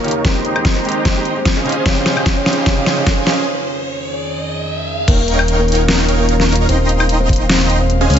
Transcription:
Already playing: analog synth pad D#2 C#3 F4 G4, supersaw synth D#4 A#4 C#5 F5 A#5, riser
0.04 grand piano D#3 C#4 F4 G4, closed hi-hat
0.08 closed hi-hat
0.11 closed hi-hat
0.24 analog synth pad D#3 G#3 G4 C5, grand piano G#3 C4 G4, kalimba C4, supersaw synth D#4 D#5 G5 A#5 C6, kick, snare, closed hi-hat
0.45 closed hi-hat
0.55 grand piano G#3 C4 G4, high woodblock
0.65 kick, snare, closed hi-hat
0.76 kalimba C4 C5
0.84 grand piano G#3 C4 G4, closed hi-hat
0.89 closed hi-hat
0.92 closed hi-hat
1.05 kalimba C4 C5, kick, snare, closed hi-hat
1.15 grand piano G#3 C4 G4
1.25 closed hi-hat
1.35 grand piano G#3 C4 G4, kalimba C4 C5
1.45 kick, snare, closed hi-hat
1.56 supersaw synth C#4 G#4 C5 D#5 F5 G#5
1.64 grand piano C#3 C4 D#4 F4 G4, analog synth pad C#3 D#4 F4, closed hi-hat
1.69 closed hi-hat
1.72 closed hi-hat
1.85 grand piano C#3 C4 D#4 F4 G4, kalimba C#4 C#5, supersaw synth C#4 G#4 C5 D#5 F5 G5, kick, snare, closed hi-hat
2.06 snare, closed hi-hat
2.16 grand piano C#3 C4 D#4 F4 G4, high woodblock
2.26 kick, snare, closed hi-hat
2.37 kalimba C#4 C#5
2.45 grand piano C#3 C4 D#4 F4 G4, snare, closed hi-hat
2.50 closed hi-hat
2.53 closed hi-hat
2.66 kalimba C#4 C#5, kick, snare, closed hi-hat
2.76 grand piano C#3 C4 D#4 F4 G4
2.86 supersaw synth C#4 G#4 C5 D#5 F5 G5, snare, closed hi-hat
2.96 grand piano C#3 C4 D#4 F4 G4, kalimba C#4 C#5
3.07 supersaw synth C#4 G#4 C5 D#5 F5 G#5, kick, snare, closed hi-hat
3.26 grand piano C#3 C4 D#4 F4 G4, snare, closed hi-hat
3.30 closed hi-hat
3.33 closed hi-hat
3.47 analog synth pad F2 D#3 G#4
5.08 analog synth bass D#1, analog synth pad D#3 C#4 F4 F5, kalimba A#3 A#4, supersaw synth D#4 A#4 C#5 F5 G5, kick, closed hi-hat, crash, ride
5.28 closed hi-hat
5.39 high woodblock
5.48 closed hi-hat
5.59 kalimba A#3 A#4
5.68 closed hi-hat
5.72 closed hi-hat
5.75 closed hi-hat
5.88 kalimba A#3 A#4, snare, closed hi-hat, ride
6.09 supersaw synth D#4 A#4 C#5 F5 G5, closed hi-hat
6.20 kalimba A#3 A#4
6.29 supersaw synth D#4 A#4 C#5 F5 A#5, closed hi-hat
6.40 snare
6.49 closed hi-hat, open hi-hat
6.56 closed hi-hat
6.69 analog synth bass D#1, analog synth pad G#3 C4, kalimba C4 C5, supersaw synth D#4 D#5 G5 A#5 C6, closed hi-hat, ride
6.89 closed hi-hat
7.00 high woodblock
7.09 closed hi-hat
7.20 kalimba C4 C5
7.29 kick, closed hi-hat
7.33 closed hi-hat
7.36 closed hi-hat
7.49 kalimba C4 C5, snare, closed hi-hat, ride
7.70 closed hi-hat
7.81 kalimba C4 C5
7.90 closed hi-hat
8.01 supersaw synth C#4 G#4 C5 D#5 F5 G#5
8.10 analog synth bass C#2, analog synth pad C#3 D#4 F4 C5, closed hi-hat, open hi-hat

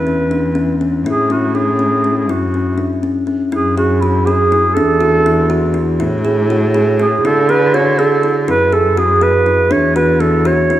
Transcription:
Already playing: cello E2, clarinet B4
0.07 kalimba C#4
0.31 kalimba D4
0.55 kalimba C#4
0.81 kalimba C#4
1.05 cello A2, kalimba E4, clarinet G#4
1.30 kalimba C#4, clarinet F#4
1.55 kalimba D4, clarinet G#4
1.79 kalimba C#4
2.04 kalimba C#4
2.17 clarinet G#4
2.29 cello F#2, kalimba E4, clarinet F#4
2.54 kalimba C#4
2.78 kalimba D4
3.03 kalimba C#4
3.27 kalimba C#4
3.52 cello F#2, kalimba E4, clarinet G#4
3.78 clarinet F#4, kalimba G#4
4.01 clarinet E4, kalimba F#4
4.25 clarinet G#4, kalimba G#4
4.52 kalimba E4
4.74 cello E2, kalimba D4, clarinet A4
5.01 kalimba F#4
5.26 kalimba E4
5.50 kalimba F#4
5.74 kalimba E4
6.00 cello A2, kalimba E4
6.25 kalimba G#4
6.50 kalimba F#4
6.74 kalimba G#4
7.00 kalimba E4, clarinet G#4
7.24 cello D3, kalimba E4, clarinet A4
7.49 kalimba G#4, clarinet B4
7.74 kalimba F#4, clarinet C#5
7.99 kalimba G#4, clarinet A4
8.23 kalimba E4
8.48 cello F#2, kalimba E4, clarinet B4
8.72 kalimba G#4, clarinet A4
8.97 kalimba F#4, clarinet G#4
9.21 kalimba G#4, clarinet B4
9.46 kalimba E4
9.71 cello E2, kalimba D4, clarinet C#5
9.96 kalimba F#4, clarinet B4
10.20 kalimba E4, clarinet A4
10.45 kalimba F#4, clarinet C#5
10.70 kalimba E4

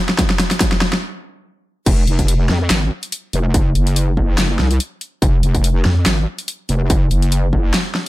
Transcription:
0.09 snare
0.19 kick, snare, closed hi-hat
0.30 snare
0.40 snare, closed hi-hat
0.51 snare, closed hi-hat
0.61 kick, snare, closed hi-hat
0.72 snare
0.81 snare
0.93 snare
1.86 wobble bass F1, kick, closed hi-hat, crash
2.07 wobble bass F1, closed hi-hat
2.19 kick, closed hi-hat
2.28 closed hi-hat
2.49 wobble bass F2, snare
2.70 wobble bass G#1, snare, clap, closed hi-hat
3.03 closed hi-hat
3.12 closed hi-hat
3.33 wobble bass F1, closed hi-hat
3.54 wobble bass F#1, kick, closed hi-hat
3.75 wobble bass F#1, closed hi-hat
3.87 closed hi-hat
3.96 closed hi-hat
4.17 kick
4.38 wobble bass F#1, snare, clap, closed hi-hat
4.59 wobble bass C2, snare
4.71 closed hi-hat
4.80 closed hi-hat
5.01 closed hi-hat
5.22 wobble bass F1, kick, closed hi-hat
5.43 wobble bass F1, closed hi-hat
5.55 kick, closed hi-hat
5.64 closed hi-hat
5.85 wobble bass F2, snare
6.06 wobble bass G#1, snare, clap, closed hi-hat
6.38 closed hi-hat
6.48 closed hi-hat
6.69 wobble bass F1, closed hi-hat
6.90 wobble bass F#1, kick, closed hi-hat
7.11 wobble bass F#1, closed hi-hat
7.22 closed hi-hat
7.32 closed hi-hat
7.53 kick
7.74 snare, clap, closed hi-hat
7.95 snare

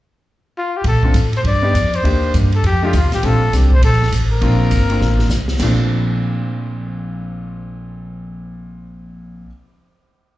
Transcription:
0.58 trumpet F4
0.77 trumpet G4
0.84 upright bass A#2, trumpet A4, kick, ride
1.03 grand piano A3 C4 D4 F4, kick
1.14 upright bass A2, kick, hi-hat pedal, ride
1.33 trumpet C5, ride
1.44 upright bass G2, trumpet D5, kick, ride
1.62 grand piano B3 D4 D#4 G4
1.74 upright bass F2, kick, hi-hat pedal, ride
1.94 trumpet C5, ride
2.03 upright bass D#2, grand piano A#3 D4 D#4 G4, kick, ride
2.34 upright bass G2, kick, hi-hat pedal, ride
2.52 trumpet A4, ride
2.63 upright bass F2, trumpet G4, kick, ride
2.82 grand piano A3 D4 D#4 G4, trumpet F4
2.93 upright bass D2, trumpet F4, kick, hi-hat pedal, ride
3.04 upright bass C2
3.12 upright bass A1, trumpet G4, snare, ride
3.23 upright bass A#1, grand piano A3 C4 D4 F4, trumpet A4, kick, ride
3.53 upright bass C2, grand piano A3 C4 D4 G4, kick, snare, hi-hat pedal, ride
3.71 trumpet C5, kick
3.82 upright bass A#1, trumpet A4, kick, ride
3.93 snare
4.02 snare
4.12 upright bass A1, kick, hi-hat pedal, ride
4.32 trumpet A#4
4.41 upright bass A#1, grand piano A#3 C4 D4 F4, kick, ride
4.71 upright bass G1, kick, hi-hat pedal, ride
4.90 grand piano A#3 C4 D4 F4, ride
5.01 upright bass A1, snare
5.19 snare
5.30 upright bass C2, snare, hi-hat pedal
5.48 snare
5.59 upright bass A#1, grand piano A#2 F3 A3 C4 D4, snare, crash

